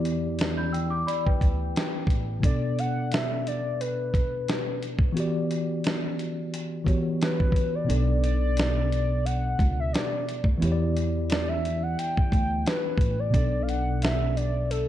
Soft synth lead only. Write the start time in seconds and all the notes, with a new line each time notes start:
2.44 D5
2.79 F#5
3.13 E5
3.47 D5
3.81 B4
7.22 B4
7.75 D5
8.24 D5
9.25 F#5
9.80 E5
9.93 D5
11.30 D5
11.49 E5
11.83 F#5
11.98 G5
12.67 B4
13.19 D5
13.35 D5
13.62 F5
13.69 F#5
14.03 E5
14.30 E5
14.36 D5
14.70 A4